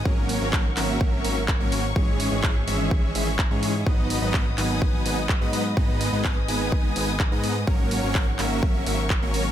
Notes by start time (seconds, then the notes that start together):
0.05 G#1 F#3 A#3 C#4 A#4 C#5 F#5 C#6, kick
0.29 open hi-hat
0.41 G#1 F#3 A#3 C#4 A#4 C#5
0.53 kick, clap
0.77 G#1 F#3 A#3 C#4 A#4 E5, clap, open hi-hat
1.01 kick
1.25 G#1 F#3 A#3 C#4 A#4 E5, open hi-hat
1.48 kick, clap
1.60 G#1 F#3 A#3 C#4 A#4 C#5
1.72 open hi-hat
1.96 G#1 E3 G#3 C#4 G#4 C#5 E5, kick
2.20 open hi-hat
2.32 G#1 E3 G#3 C#4 G#4 C#5
2.44 kick, clap
2.67 G#1 E3 G#3 C#4 G#4 E5, open hi-hat
2.91 kick
3.15 G#1 E3 G#3 C#4 G#4 E5, open hi-hat
3.39 kick, clap
3.51 G#2 E3 G#3 C#4 G#4 C#5
3.63 open hi-hat
3.86 G#1 F#3 B3 D#4 B4 D#5 F#5 D#6, kick
4.10 open hi-hat
4.22 G#1 F#3 B3 D#4 B4 D#5
4.34 kick, clap
4.58 G#1 F#3 B3 D#4 B4 G#5, clap, open hi-hat
4.82 kick
5.06 G#1 F#3 B3 D#4 B4 G#5, open hi-hat
5.29 kick, clap
5.41 G#2 F#3 B3 D#4 B4 D#5
5.53 open hi-hat
5.77 G#1 G#3 B3 D#4 B4 D#5 G#5 D#6, kick
6.01 open hi-hat
6.13 G#1 G#3 B3 D#4 B4 D#5
6.25 kick, clap
6.48 G#1 G#3 B3 D#4 B4 G#5, open hi-hat
6.72 kick
6.96 G#1 G#3 B3 D#4 B4 G#5, open hi-hat
7.20 kick, clap
7.32 G#2 G#3 B3 D#4 B4 D#5
7.44 open hi-hat
7.67 G#1 F#3 A#3 C#4 A#4 C#5 F#5 C#6, kick
7.91 open hi-hat
8.03 G#1 F#3 A#3 C#4 A#4 C#5
8.15 kick, clap
8.39 G#1 F#3 A#3 C#4 A#4 E5, clap, open hi-hat
8.63 kick
8.86 G#1 F#3 A#3 C#4 A#4 E5, open hi-hat
9.10 kick, clap
9.22 G#1 F#3 A#3 C#4 A#4 C#5
9.34 open hi-hat